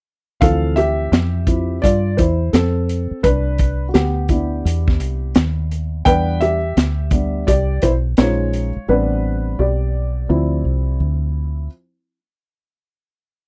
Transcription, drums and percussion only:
0, 0, Header, 1, 2, 480
1, 0, Start_track
1, 0, Tempo, 705882
1, 280, Time_signature, 4, 2, 24, 8
1, 9165, End_track
2, 0, Start_track
2, 0, Title_t, "Drums"
2, 283, Note_on_c, 9, 42, 70
2, 284, Note_on_c, 9, 36, 101
2, 351, Note_off_c, 9, 42, 0
2, 352, Note_off_c, 9, 36, 0
2, 523, Note_on_c, 9, 42, 72
2, 591, Note_off_c, 9, 42, 0
2, 765, Note_on_c, 9, 42, 69
2, 770, Note_on_c, 9, 38, 94
2, 833, Note_off_c, 9, 42, 0
2, 838, Note_off_c, 9, 38, 0
2, 998, Note_on_c, 9, 42, 56
2, 999, Note_on_c, 9, 36, 73
2, 1066, Note_off_c, 9, 42, 0
2, 1067, Note_off_c, 9, 36, 0
2, 1249, Note_on_c, 9, 36, 76
2, 1255, Note_on_c, 9, 42, 77
2, 1317, Note_off_c, 9, 36, 0
2, 1323, Note_off_c, 9, 42, 0
2, 1483, Note_on_c, 9, 42, 68
2, 1487, Note_on_c, 9, 36, 84
2, 1551, Note_off_c, 9, 42, 0
2, 1555, Note_off_c, 9, 36, 0
2, 1722, Note_on_c, 9, 42, 79
2, 1729, Note_on_c, 9, 38, 111
2, 1790, Note_off_c, 9, 42, 0
2, 1797, Note_off_c, 9, 38, 0
2, 1967, Note_on_c, 9, 42, 66
2, 2035, Note_off_c, 9, 42, 0
2, 2202, Note_on_c, 9, 42, 73
2, 2203, Note_on_c, 9, 36, 95
2, 2270, Note_off_c, 9, 42, 0
2, 2271, Note_off_c, 9, 36, 0
2, 2437, Note_on_c, 9, 42, 71
2, 2444, Note_on_c, 9, 36, 83
2, 2505, Note_off_c, 9, 42, 0
2, 2512, Note_off_c, 9, 36, 0
2, 2680, Note_on_c, 9, 42, 65
2, 2685, Note_on_c, 9, 38, 101
2, 2748, Note_off_c, 9, 42, 0
2, 2753, Note_off_c, 9, 38, 0
2, 2913, Note_on_c, 9, 42, 57
2, 2917, Note_on_c, 9, 36, 71
2, 2981, Note_off_c, 9, 42, 0
2, 2985, Note_off_c, 9, 36, 0
2, 3172, Note_on_c, 9, 42, 90
2, 3240, Note_off_c, 9, 42, 0
2, 3316, Note_on_c, 9, 36, 80
2, 3324, Note_on_c, 9, 38, 33
2, 3384, Note_off_c, 9, 36, 0
2, 3392, Note_off_c, 9, 38, 0
2, 3400, Note_on_c, 9, 42, 75
2, 3468, Note_off_c, 9, 42, 0
2, 3636, Note_on_c, 9, 42, 82
2, 3642, Note_on_c, 9, 38, 109
2, 3704, Note_off_c, 9, 42, 0
2, 3710, Note_off_c, 9, 38, 0
2, 3885, Note_on_c, 9, 42, 66
2, 3953, Note_off_c, 9, 42, 0
2, 4117, Note_on_c, 9, 42, 79
2, 4121, Note_on_c, 9, 36, 103
2, 4185, Note_off_c, 9, 42, 0
2, 4189, Note_off_c, 9, 36, 0
2, 4360, Note_on_c, 9, 42, 73
2, 4428, Note_off_c, 9, 42, 0
2, 4603, Note_on_c, 9, 42, 73
2, 4608, Note_on_c, 9, 38, 96
2, 4671, Note_off_c, 9, 42, 0
2, 4676, Note_off_c, 9, 38, 0
2, 4832, Note_on_c, 9, 42, 62
2, 4836, Note_on_c, 9, 36, 87
2, 4900, Note_off_c, 9, 42, 0
2, 4904, Note_off_c, 9, 36, 0
2, 5085, Note_on_c, 9, 36, 82
2, 5086, Note_on_c, 9, 42, 85
2, 5153, Note_off_c, 9, 36, 0
2, 5154, Note_off_c, 9, 42, 0
2, 5316, Note_on_c, 9, 42, 74
2, 5324, Note_on_c, 9, 36, 82
2, 5384, Note_off_c, 9, 42, 0
2, 5392, Note_off_c, 9, 36, 0
2, 5555, Note_on_c, 9, 42, 76
2, 5561, Note_on_c, 9, 38, 109
2, 5623, Note_off_c, 9, 42, 0
2, 5629, Note_off_c, 9, 38, 0
2, 5802, Note_on_c, 9, 42, 71
2, 5870, Note_off_c, 9, 42, 0
2, 9165, End_track
0, 0, End_of_file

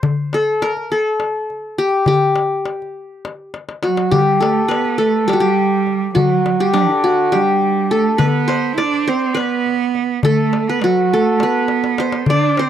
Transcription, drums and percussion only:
0, 0, Header, 1, 2, 480
1, 0, Start_track
1, 0, Tempo, 583090
1, 35, Time_signature, 7, 3, 24, 8
1, 10451, End_track
2, 0, Start_track
2, 0, Title_t, "Darbuka"
2, 25, Note_on_c, 9, 64, 89
2, 107, Note_off_c, 9, 64, 0
2, 271, Note_on_c, 9, 63, 65
2, 354, Note_off_c, 9, 63, 0
2, 511, Note_on_c, 9, 63, 65
2, 594, Note_off_c, 9, 63, 0
2, 632, Note_on_c, 9, 62, 22
2, 714, Note_off_c, 9, 62, 0
2, 742, Note_on_c, 9, 62, 23
2, 824, Note_off_c, 9, 62, 0
2, 986, Note_on_c, 9, 63, 64
2, 1068, Note_off_c, 9, 63, 0
2, 1234, Note_on_c, 9, 62, 21
2, 1317, Note_off_c, 9, 62, 0
2, 1467, Note_on_c, 9, 62, 22
2, 1550, Note_off_c, 9, 62, 0
2, 1697, Note_on_c, 9, 64, 89
2, 1779, Note_off_c, 9, 64, 0
2, 1939, Note_on_c, 9, 63, 66
2, 2021, Note_off_c, 9, 63, 0
2, 2186, Note_on_c, 9, 63, 61
2, 2268, Note_off_c, 9, 63, 0
2, 2321, Note_on_c, 9, 62, 20
2, 2403, Note_off_c, 9, 62, 0
2, 2675, Note_on_c, 9, 63, 62
2, 2757, Note_off_c, 9, 63, 0
2, 2913, Note_on_c, 9, 63, 53
2, 2996, Note_off_c, 9, 63, 0
2, 3035, Note_on_c, 9, 62, 63
2, 3117, Note_off_c, 9, 62, 0
2, 3150, Note_on_c, 9, 63, 68
2, 3232, Note_off_c, 9, 63, 0
2, 3271, Note_on_c, 9, 62, 76
2, 3354, Note_off_c, 9, 62, 0
2, 3393, Note_on_c, 9, 64, 80
2, 3475, Note_off_c, 9, 64, 0
2, 3642, Note_on_c, 9, 63, 74
2, 3725, Note_off_c, 9, 63, 0
2, 3880, Note_on_c, 9, 63, 74
2, 3962, Note_off_c, 9, 63, 0
2, 3996, Note_on_c, 9, 62, 27
2, 4078, Note_off_c, 9, 62, 0
2, 4119, Note_on_c, 9, 62, 27
2, 4201, Note_off_c, 9, 62, 0
2, 4358, Note_on_c, 9, 63, 63
2, 4441, Note_off_c, 9, 63, 0
2, 4600, Note_on_c, 9, 62, 25
2, 4683, Note_off_c, 9, 62, 0
2, 4832, Note_on_c, 9, 62, 29
2, 4914, Note_off_c, 9, 62, 0
2, 5074, Note_on_c, 9, 64, 88
2, 5156, Note_off_c, 9, 64, 0
2, 5316, Note_on_c, 9, 63, 67
2, 5398, Note_off_c, 9, 63, 0
2, 5547, Note_on_c, 9, 63, 66
2, 5630, Note_off_c, 9, 63, 0
2, 5675, Note_on_c, 9, 62, 25
2, 5757, Note_off_c, 9, 62, 0
2, 5803, Note_on_c, 9, 62, 26
2, 5885, Note_off_c, 9, 62, 0
2, 6033, Note_on_c, 9, 63, 61
2, 6115, Note_off_c, 9, 63, 0
2, 6272, Note_on_c, 9, 62, 25
2, 6354, Note_off_c, 9, 62, 0
2, 6511, Note_on_c, 9, 62, 25
2, 6593, Note_off_c, 9, 62, 0
2, 6744, Note_on_c, 9, 64, 101
2, 6827, Note_off_c, 9, 64, 0
2, 6990, Note_on_c, 9, 63, 63
2, 7072, Note_off_c, 9, 63, 0
2, 7229, Note_on_c, 9, 63, 62
2, 7311, Note_off_c, 9, 63, 0
2, 7357, Note_on_c, 9, 62, 27
2, 7439, Note_off_c, 9, 62, 0
2, 7478, Note_on_c, 9, 62, 28
2, 7561, Note_off_c, 9, 62, 0
2, 7714, Note_on_c, 9, 63, 59
2, 7796, Note_off_c, 9, 63, 0
2, 7955, Note_on_c, 9, 62, 29
2, 8038, Note_off_c, 9, 62, 0
2, 8190, Note_on_c, 9, 62, 30
2, 8272, Note_off_c, 9, 62, 0
2, 8422, Note_on_c, 9, 64, 101
2, 8504, Note_off_c, 9, 64, 0
2, 8668, Note_on_c, 9, 63, 66
2, 8751, Note_off_c, 9, 63, 0
2, 8904, Note_on_c, 9, 63, 65
2, 8986, Note_off_c, 9, 63, 0
2, 9030, Note_on_c, 9, 62, 30
2, 9112, Note_off_c, 9, 62, 0
2, 9157, Note_on_c, 9, 62, 30
2, 9240, Note_off_c, 9, 62, 0
2, 9384, Note_on_c, 9, 63, 66
2, 9467, Note_off_c, 9, 63, 0
2, 9617, Note_on_c, 9, 63, 53
2, 9699, Note_off_c, 9, 63, 0
2, 9745, Note_on_c, 9, 62, 66
2, 9827, Note_off_c, 9, 62, 0
2, 9865, Note_on_c, 9, 63, 75
2, 9947, Note_off_c, 9, 63, 0
2, 9981, Note_on_c, 9, 62, 82
2, 10063, Note_off_c, 9, 62, 0
2, 10096, Note_on_c, 9, 64, 94
2, 10178, Note_off_c, 9, 64, 0
2, 10351, Note_on_c, 9, 63, 68
2, 10433, Note_off_c, 9, 63, 0
2, 10451, End_track
0, 0, End_of_file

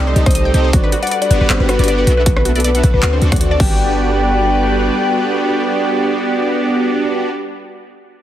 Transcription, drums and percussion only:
0, 0, Header, 1, 2, 480
1, 0, Start_track
1, 0, Key_signature, 1, "major"
1, 0, Tempo, 382166
1, 922, Time_signature, 4, 2, 24, 8
1, 10327, End_track
2, 0, Start_track
2, 0, Title_t, "Drums"
2, 201, Note_on_c, 9, 42, 67
2, 327, Note_off_c, 9, 42, 0
2, 330, Note_on_c, 9, 37, 67
2, 330, Note_on_c, 9, 42, 51
2, 331, Note_on_c, 9, 36, 102
2, 385, Note_off_c, 9, 42, 0
2, 385, Note_on_c, 9, 42, 65
2, 440, Note_off_c, 9, 42, 0
2, 440, Note_on_c, 9, 42, 83
2, 455, Note_off_c, 9, 37, 0
2, 456, Note_off_c, 9, 36, 0
2, 566, Note_off_c, 9, 42, 0
2, 680, Note_on_c, 9, 42, 65
2, 805, Note_off_c, 9, 42, 0
2, 920, Note_on_c, 9, 42, 82
2, 921, Note_on_c, 9, 36, 118
2, 1046, Note_off_c, 9, 42, 0
2, 1047, Note_off_c, 9, 36, 0
2, 1160, Note_on_c, 9, 42, 69
2, 1285, Note_off_c, 9, 42, 0
2, 1289, Note_on_c, 9, 42, 49
2, 1343, Note_off_c, 9, 42, 0
2, 1343, Note_on_c, 9, 42, 62
2, 1400, Note_off_c, 9, 42, 0
2, 1400, Note_on_c, 9, 42, 84
2, 1526, Note_off_c, 9, 42, 0
2, 1530, Note_on_c, 9, 42, 60
2, 1641, Note_off_c, 9, 42, 0
2, 1641, Note_on_c, 9, 42, 67
2, 1767, Note_off_c, 9, 42, 0
2, 1881, Note_on_c, 9, 39, 115
2, 1881, Note_on_c, 9, 42, 77
2, 2006, Note_off_c, 9, 39, 0
2, 2006, Note_off_c, 9, 42, 0
2, 2121, Note_on_c, 9, 37, 83
2, 2121, Note_on_c, 9, 42, 67
2, 2246, Note_off_c, 9, 37, 0
2, 2246, Note_off_c, 9, 42, 0
2, 2250, Note_on_c, 9, 42, 50
2, 2307, Note_off_c, 9, 42, 0
2, 2307, Note_on_c, 9, 42, 67
2, 2361, Note_off_c, 9, 42, 0
2, 2361, Note_on_c, 9, 42, 80
2, 2487, Note_off_c, 9, 42, 0
2, 2601, Note_on_c, 9, 42, 68
2, 2727, Note_off_c, 9, 42, 0
2, 2840, Note_on_c, 9, 42, 88
2, 2841, Note_on_c, 9, 36, 110
2, 2966, Note_off_c, 9, 42, 0
2, 2967, Note_off_c, 9, 36, 0
2, 2971, Note_on_c, 9, 37, 80
2, 3081, Note_on_c, 9, 42, 69
2, 3096, Note_off_c, 9, 37, 0
2, 3207, Note_off_c, 9, 42, 0
2, 3209, Note_on_c, 9, 42, 51
2, 3265, Note_off_c, 9, 42, 0
2, 3265, Note_on_c, 9, 42, 67
2, 3322, Note_off_c, 9, 42, 0
2, 3322, Note_on_c, 9, 42, 85
2, 3447, Note_off_c, 9, 42, 0
2, 3450, Note_on_c, 9, 42, 64
2, 3561, Note_off_c, 9, 42, 0
2, 3561, Note_on_c, 9, 36, 62
2, 3561, Note_on_c, 9, 42, 67
2, 3686, Note_off_c, 9, 42, 0
2, 3687, Note_off_c, 9, 36, 0
2, 3799, Note_on_c, 9, 39, 107
2, 3799, Note_on_c, 9, 42, 81
2, 3925, Note_off_c, 9, 39, 0
2, 3925, Note_off_c, 9, 42, 0
2, 4040, Note_on_c, 9, 42, 69
2, 4165, Note_off_c, 9, 42, 0
2, 4170, Note_on_c, 9, 36, 107
2, 4170, Note_on_c, 9, 37, 63
2, 4170, Note_on_c, 9, 42, 54
2, 4225, Note_off_c, 9, 42, 0
2, 4225, Note_on_c, 9, 42, 69
2, 4280, Note_off_c, 9, 42, 0
2, 4280, Note_on_c, 9, 42, 87
2, 4295, Note_off_c, 9, 37, 0
2, 4296, Note_off_c, 9, 36, 0
2, 4405, Note_off_c, 9, 42, 0
2, 4520, Note_on_c, 9, 49, 90
2, 4521, Note_on_c, 9, 36, 117
2, 4645, Note_off_c, 9, 49, 0
2, 4646, Note_off_c, 9, 36, 0
2, 10327, End_track
0, 0, End_of_file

